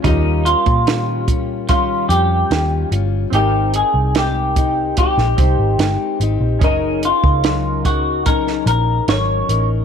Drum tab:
HH |x-xxx-x-x-x-x-x-|x-x-x-x-x-x-x-x-|x-x-x-x-x-x-x-x-|
SD |----o-------o---|----o----o--o---|----o----o--o---|
BD |o--o--o-o-------|------o-o-o-----|o--o--o-o-------|